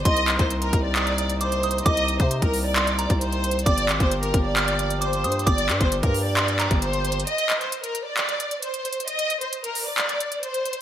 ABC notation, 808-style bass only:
X:1
M:4/4
L:1/16
Q:1/4=133
K:Gphr
V:1 name="808-style bass" clef=bass
C,,3 C,,3 C,,8- C,,2 | C,,3 C,2 C,,6 C,,4- C,, | G,,,2 A,,, G,,,3 G,,,8 G,,2 | G,,,2 G,, G,,,2 G,,6 G,,,4- G,,, |
z16 | z16 |]